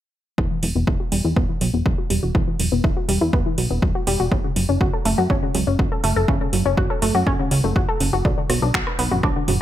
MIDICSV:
0, 0, Header, 1, 4, 480
1, 0, Start_track
1, 0, Tempo, 491803
1, 373, Time_signature, 4, 2, 24, 8
1, 9388, End_track
2, 0, Start_track
2, 0, Title_t, "Synth pluck"
2, 0, Program_c, 0, 84
2, 372, Note_on_c, 0, 52, 97
2, 468, Note_off_c, 0, 52, 0
2, 496, Note_on_c, 0, 52, 72
2, 606, Note_off_c, 0, 52, 0
2, 613, Note_on_c, 0, 54, 69
2, 708, Note_off_c, 0, 54, 0
2, 736, Note_on_c, 0, 59, 73
2, 826, Note_off_c, 0, 59, 0
2, 852, Note_on_c, 0, 64, 82
2, 948, Note_off_c, 0, 64, 0
2, 976, Note_on_c, 0, 66, 75
2, 1066, Note_off_c, 0, 66, 0
2, 1092, Note_on_c, 0, 55, 98
2, 1210, Note_off_c, 0, 55, 0
2, 1216, Note_on_c, 0, 64, 72
2, 1306, Note_off_c, 0, 64, 0
2, 1332, Note_on_c, 0, 59, 97
2, 1390, Note_off_c, 0, 59, 0
2, 1456, Note_on_c, 0, 52, 73
2, 1567, Note_off_c, 0, 52, 0
2, 1573, Note_on_c, 0, 54, 75
2, 1668, Note_off_c, 0, 54, 0
2, 1696, Note_on_c, 0, 59, 71
2, 1786, Note_off_c, 0, 59, 0
2, 1812, Note_on_c, 0, 54, 76
2, 1908, Note_off_c, 0, 54, 0
2, 1936, Note_on_c, 0, 66, 76
2, 2026, Note_off_c, 0, 66, 0
2, 2052, Note_on_c, 0, 55, 93
2, 2170, Note_off_c, 0, 55, 0
2, 2176, Note_on_c, 0, 66, 73
2, 2230, Note_off_c, 0, 66, 0
2, 2292, Note_on_c, 0, 52, 100
2, 2388, Note_off_c, 0, 52, 0
2, 2416, Note_on_c, 0, 52, 72
2, 2526, Note_off_c, 0, 52, 0
2, 2532, Note_on_c, 0, 54, 70
2, 2628, Note_off_c, 0, 54, 0
2, 2656, Note_on_c, 0, 59, 75
2, 2746, Note_off_c, 0, 59, 0
2, 2772, Note_on_c, 0, 64, 81
2, 2868, Note_off_c, 0, 64, 0
2, 2896, Note_on_c, 0, 66, 75
2, 2986, Note_off_c, 0, 66, 0
2, 3012, Note_on_c, 0, 55, 95
2, 3130, Note_off_c, 0, 55, 0
2, 3136, Note_on_c, 0, 64, 75
2, 3226, Note_off_c, 0, 64, 0
2, 3252, Note_on_c, 0, 59, 95
2, 3310, Note_off_c, 0, 59, 0
2, 3376, Note_on_c, 0, 52, 72
2, 3486, Note_off_c, 0, 52, 0
2, 3492, Note_on_c, 0, 54, 73
2, 3588, Note_off_c, 0, 54, 0
2, 3616, Note_on_c, 0, 59, 73
2, 3706, Note_off_c, 0, 59, 0
2, 3733, Note_on_c, 0, 54, 79
2, 3828, Note_off_c, 0, 54, 0
2, 3856, Note_on_c, 0, 66, 78
2, 3946, Note_off_c, 0, 66, 0
2, 3973, Note_on_c, 0, 55, 102
2, 4090, Note_off_c, 0, 55, 0
2, 4096, Note_on_c, 0, 66, 74
2, 4150, Note_off_c, 0, 66, 0
2, 4213, Note_on_c, 0, 49, 97
2, 4308, Note_off_c, 0, 49, 0
2, 4336, Note_on_c, 0, 49, 69
2, 4447, Note_off_c, 0, 49, 0
2, 4452, Note_on_c, 0, 54, 71
2, 4548, Note_off_c, 0, 54, 0
2, 4576, Note_on_c, 0, 61, 76
2, 4666, Note_off_c, 0, 61, 0
2, 4693, Note_on_c, 0, 66, 84
2, 4788, Note_off_c, 0, 66, 0
2, 4816, Note_on_c, 0, 69, 74
2, 4906, Note_off_c, 0, 69, 0
2, 4933, Note_on_c, 0, 57, 99
2, 5050, Note_off_c, 0, 57, 0
2, 5056, Note_on_c, 0, 66, 76
2, 5146, Note_off_c, 0, 66, 0
2, 5172, Note_on_c, 0, 61, 98
2, 5230, Note_off_c, 0, 61, 0
2, 5296, Note_on_c, 0, 49, 74
2, 5406, Note_off_c, 0, 49, 0
2, 5412, Note_on_c, 0, 54, 72
2, 5508, Note_off_c, 0, 54, 0
2, 5536, Note_on_c, 0, 61, 70
2, 5626, Note_off_c, 0, 61, 0
2, 5652, Note_on_c, 0, 54, 79
2, 5748, Note_off_c, 0, 54, 0
2, 5776, Note_on_c, 0, 69, 76
2, 5866, Note_off_c, 0, 69, 0
2, 5892, Note_on_c, 0, 57, 100
2, 6010, Note_off_c, 0, 57, 0
2, 6016, Note_on_c, 0, 69, 75
2, 6070, Note_off_c, 0, 69, 0
2, 6132, Note_on_c, 0, 49, 98
2, 6228, Note_off_c, 0, 49, 0
2, 6256, Note_on_c, 0, 49, 71
2, 6367, Note_off_c, 0, 49, 0
2, 6372, Note_on_c, 0, 54, 69
2, 6468, Note_off_c, 0, 54, 0
2, 6496, Note_on_c, 0, 61, 77
2, 6586, Note_off_c, 0, 61, 0
2, 6613, Note_on_c, 0, 66, 82
2, 6708, Note_off_c, 0, 66, 0
2, 6736, Note_on_c, 0, 69, 73
2, 6826, Note_off_c, 0, 69, 0
2, 6852, Note_on_c, 0, 57, 97
2, 6970, Note_off_c, 0, 57, 0
2, 6976, Note_on_c, 0, 66, 73
2, 7066, Note_off_c, 0, 66, 0
2, 7092, Note_on_c, 0, 61, 99
2, 7150, Note_off_c, 0, 61, 0
2, 7216, Note_on_c, 0, 49, 76
2, 7321, Note_off_c, 0, 49, 0
2, 7332, Note_on_c, 0, 49, 75
2, 7450, Note_off_c, 0, 49, 0
2, 7456, Note_on_c, 0, 57, 73
2, 7566, Note_off_c, 0, 57, 0
2, 7572, Note_on_c, 0, 66, 78
2, 7668, Note_off_c, 0, 66, 0
2, 7696, Note_on_c, 0, 69, 79
2, 7786, Note_off_c, 0, 69, 0
2, 7812, Note_on_c, 0, 49, 75
2, 7908, Note_off_c, 0, 49, 0
2, 7935, Note_on_c, 0, 66, 72
2, 8025, Note_off_c, 0, 66, 0
2, 8052, Note_on_c, 0, 50, 94
2, 8148, Note_off_c, 0, 50, 0
2, 8175, Note_on_c, 0, 50, 71
2, 8286, Note_off_c, 0, 50, 0
2, 8292, Note_on_c, 0, 54, 71
2, 8388, Note_off_c, 0, 54, 0
2, 8416, Note_on_c, 0, 62, 77
2, 8506, Note_off_c, 0, 62, 0
2, 8532, Note_on_c, 0, 66, 82
2, 8628, Note_off_c, 0, 66, 0
2, 8656, Note_on_c, 0, 71, 75
2, 8746, Note_off_c, 0, 71, 0
2, 8772, Note_on_c, 0, 59, 98
2, 8889, Note_off_c, 0, 59, 0
2, 8896, Note_on_c, 0, 66, 75
2, 8986, Note_off_c, 0, 66, 0
2, 9012, Note_on_c, 0, 62, 99
2, 9069, Note_off_c, 0, 62, 0
2, 9135, Note_on_c, 0, 50, 74
2, 9246, Note_off_c, 0, 50, 0
2, 9252, Note_on_c, 0, 54, 73
2, 9347, Note_off_c, 0, 54, 0
2, 9388, End_track
3, 0, Start_track
3, 0, Title_t, "Analog synth bass"
3, 0, Program_c, 1, 38
3, 372, Note_on_c, 1, 28, 96
3, 473, Note_off_c, 1, 28, 0
3, 612, Note_on_c, 1, 28, 89
3, 713, Note_off_c, 1, 28, 0
3, 736, Note_on_c, 1, 28, 78
3, 831, Note_off_c, 1, 28, 0
3, 852, Note_on_c, 1, 28, 94
3, 953, Note_off_c, 1, 28, 0
3, 1092, Note_on_c, 1, 28, 91
3, 1193, Note_off_c, 1, 28, 0
3, 1216, Note_on_c, 1, 40, 76
3, 1311, Note_off_c, 1, 40, 0
3, 1332, Note_on_c, 1, 28, 97
3, 1433, Note_off_c, 1, 28, 0
3, 1572, Note_on_c, 1, 35, 93
3, 1673, Note_off_c, 1, 35, 0
3, 1696, Note_on_c, 1, 28, 80
3, 1791, Note_off_c, 1, 28, 0
3, 1812, Note_on_c, 1, 28, 93
3, 1913, Note_off_c, 1, 28, 0
3, 2052, Note_on_c, 1, 28, 89
3, 2153, Note_off_c, 1, 28, 0
3, 2176, Note_on_c, 1, 28, 79
3, 2271, Note_off_c, 1, 28, 0
3, 2292, Note_on_c, 1, 28, 97
3, 2393, Note_off_c, 1, 28, 0
3, 2532, Note_on_c, 1, 28, 86
3, 2633, Note_off_c, 1, 28, 0
3, 2656, Note_on_c, 1, 28, 82
3, 2751, Note_off_c, 1, 28, 0
3, 2772, Note_on_c, 1, 28, 94
3, 2873, Note_off_c, 1, 28, 0
3, 3012, Note_on_c, 1, 28, 93
3, 3113, Note_off_c, 1, 28, 0
3, 3136, Note_on_c, 1, 40, 78
3, 3231, Note_off_c, 1, 40, 0
3, 3252, Note_on_c, 1, 28, 100
3, 3353, Note_off_c, 1, 28, 0
3, 3492, Note_on_c, 1, 35, 94
3, 3593, Note_off_c, 1, 35, 0
3, 3616, Note_on_c, 1, 28, 81
3, 3711, Note_off_c, 1, 28, 0
3, 3732, Note_on_c, 1, 28, 97
3, 3833, Note_off_c, 1, 28, 0
3, 3972, Note_on_c, 1, 28, 91
3, 4073, Note_off_c, 1, 28, 0
3, 4096, Note_on_c, 1, 28, 81
3, 4191, Note_off_c, 1, 28, 0
3, 4212, Note_on_c, 1, 30, 99
3, 4313, Note_off_c, 1, 30, 0
3, 4452, Note_on_c, 1, 30, 91
3, 4553, Note_off_c, 1, 30, 0
3, 4576, Note_on_c, 1, 30, 78
3, 4671, Note_off_c, 1, 30, 0
3, 4692, Note_on_c, 1, 30, 97
3, 4793, Note_off_c, 1, 30, 0
3, 4932, Note_on_c, 1, 30, 93
3, 5033, Note_off_c, 1, 30, 0
3, 5056, Note_on_c, 1, 42, 75
3, 5151, Note_off_c, 1, 42, 0
3, 5172, Note_on_c, 1, 30, 98
3, 5273, Note_off_c, 1, 30, 0
3, 5412, Note_on_c, 1, 37, 93
3, 5513, Note_off_c, 1, 37, 0
3, 5536, Note_on_c, 1, 30, 77
3, 5631, Note_off_c, 1, 30, 0
3, 5652, Note_on_c, 1, 30, 98
3, 5753, Note_off_c, 1, 30, 0
3, 5892, Note_on_c, 1, 30, 90
3, 5993, Note_off_c, 1, 30, 0
3, 6016, Note_on_c, 1, 30, 77
3, 6111, Note_off_c, 1, 30, 0
3, 6132, Note_on_c, 1, 30, 97
3, 6233, Note_off_c, 1, 30, 0
3, 6372, Note_on_c, 1, 30, 93
3, 6473, Note_off_c, 1, 30, 0
3, 6496, Note_on_c, 1, 30, 78
3, 6591, Note_off_c, 1, 30, 0
3, 6612, Note_on_c, 1, 30, 95
3, 6713, Note_off_c, 1, 30, 0
3, 6852, Note_on_c, 1, 30, 93
3, 6953, Note_off_c, 1, 30, 0
3, 6975, Note_on_c, 1, 42, 80
3, 7070, Note_off_c, 1, 42, 0
3, 7092, Note_on_c, 1, 30, 97
3, 7193, Note_off_c, 1, 30, 0
3, 7332, Note_on_c, 1, 37, 97
3, 7433, Note_off_c, 1, 37, 0
3, 7456, Note_on_c, 1, 30, 78
3, 7551, Note_off_c, 1, 30, 0
3, 7572, Note_on_c, 1, 30, 97
3, 7673, Note_off_c, 1, 30, 0
3, 7812, Note_on_c, 1, 30, 94
3, 7913, Note_off_c, 1, 30, 0
3, 7936, Note_on_c, 1, 30, 78
3, 8031, Note_off_c, 1, 30, 0
3, 8052, Note_on_c, 1, 35, 99
3, 8153, Note_off_c, 1, 35, 0
3, 8292, Note_on_c, 1, 35, 90
3, 8393, Note_off_c, 1, 35, 0
3, 8415, Note_on_c, 1, 35, 79
3, 8511, Note_off_c, 1, 35, 0
3, 8532, Note_on_c, 1, 35, 96
3, 8633, Note_off_c, 1, 35, 0
3, 8772, Note_on_c, 1, 35, 93
3, 8873, Note_off_c, 1, 35, 0
3, 8895, Note_on_c, 1, 30, 80
3, 8990, Note_off_c, 1, 30, 0
3, 9012, Note_on_c, 1, 35, 95
3, 9113, Note_off_c, 1, 35, 0
3, 9252, Note_on_c, 1, 30, 95
3, 9353, Note_off_c, 1, 30, 0
3, 9388, End_track
4, 0, Start_track
4, 0, Title_t, "Drums"
4, 372, Note_on_c, 9, 36, 112
4, 470, Note_off_c, 9, 36, 0
4, 612, Note_on_c, 9, 46, 97
4, 710, Note_off_c, 9, 46, 0
4, 852, Note_on_c, 9, 36, 112
4, 950, Note_off_c, 9, 36, 0
4, 1092, Note_on_c, 9, 46, 96
4, 1190, Note_off_c, 9, 46, 0
4, 1332, Note_on_c, 9, 36, 116
4, 1430, Note_off_c, 9, 36, 0
4, 1572, Note_on_c, 9, 46, 93
4, 1670, Note_off_c, 9, 46, 0
4, 1812, Note_on_c, 9, 36, 111
4, 1910, Note_off_c, 9, 36, 0
4, 2053, Note_on_c, 9, 46, 102
4, 2150, Note_off_c, 9, 46, 0
4, 2292, Note_on_c, 9, 36, 117
4, 2390, Note_off_c, 9, 36, 0
4, 2533, Note_on_c, 9, 46, 106
4, 2631, Note_off_c, 9, 46, 0
4, 2772, Note_on_c, 9, 36, 114
4, 2870, Note_off_c, 9, 36, 0
4, 3013, Note_on_c, 9, 46, 99
4, 3110, Note_off_c, 9, 46, 0
4, 3252, Note_on_c, 9, 36, 118
4, 3350, Note_off_c, 9, 36, 0
4, 3493, Note_on_c, 9, 46, 101
4, 3590, Note_off_c, 9, 46, 0
4, 3732, Note_on_c, 9, 36, 113
4, 3830, Note_off_c, 9, 36, 0
4, 3973, Note_on_c, 9, 46, 100
4, 4070, Note_off_c, 9, 46, 0
4, 4212, Note_on_c, 9, 36, 114
4, 4310, Note_off_c, 9, 36, 0
4, 4453, Note_on_c, 9, 46, 104
4, 4550, Note_off_c, 9, 46, 0
4, 4692, Note_on_c, 9, 36, 113
4, 4790, Note_off_c, 9, 36, 0
4, 4933, Note_on_c, 9, 46, 101
4, 5030, Note_off_c, 9, 46, 0
4, 5172, Note_on_c, 9, 36, 118
4, 5270, Note_off_c, 9, 36, 0
4, 5413, Note_on_c, 9, 46, 106
4, 5510, Note_off_c, 9, 46, 0
4, 5652, Note_on_c, 9, 36, 116
4, 5750, Note_off_c, 9, 36, 0
4, 5892, Note_on_c, 9, 46, 105
4, 5990, Note_off_c, 9, 46, 0
4, 6132, Note_on_c, 9, 36, 120
4, 6230, Note_off_c, 9, 36, 0
4, 6373, Note_on_c, 9, 46, 104
4, 6470, Note_off_c, 9, 46, 0
4, 6612, Note_on_c, 9, 36, 116
4, 6710, Note_off_c, 9, 36, 0
4, 6853, Note_on_c, 9, 46, 100
4, 6950, Note_off_c, 9, 46, 0
4, 7092, Note_on_c, 9, 36, 114
4, 7190, Note_off_c, 9, 36, 0
4, 7332, Note_on_c, 9, 46, 102
4, 7430, Note_off_c, 9, 46, 0
4, 7572, Note_on_c, 9, 36, 119
4, 7670, Note_off_c, 9, 36, 0
4, 7812, Note_on_c, 9, 46, 103
4, 7910, Note_off_c, 9, 46, 0
4, 8052, Note_on_c, 9, 36, 114
4, 8150, Note_off_c, 9, 36, 0
4, 8292, Note_on_c, 9, 37, 52
4, 8292, Note_on_c, 9, 46, 103
4, 8390, Note_off_c, 9, 37, 0
4, 8390, Note_off_c, 9, 46, 0
4, 8532, Note_on_c, 9, 26, 109
4, 8532, Note_on_c, 9, 36, 115
4, 8630, Note_off_c, 9, 26, 0
4, 8630, Note_off_c, 9, 36, 0
4, 8656, Note_on_c, 9, 37, 52
4, 8753, Note_off_c, 9, 37, 0
4, 8772, Note_on_c, 9, 46, 102
4, 8870, Note_off_c, 9, 46, 0
4, 8896, Note_on_c, 9, 45, 79
4, 8994, Note_off_c, 9, 45, 0
4, 9012, Note_on_c, 9, 36, 115
4, 9012, Note_on_c, 9, 37, 56
4, 9110, Note_off_c, 9, 36, 0
4, 9110, Note_off_c, 9, 37, 0
4, 9252, Note_on_c, 9, 45, 82
4, 9252, Note_on_c, 9, 46, 103
4, 9350, Note_off_c, 9, 45, 0
4, 9350, Note_off_c, 9, 46, 0
4, 9388, End_track
0, 0, End_of_file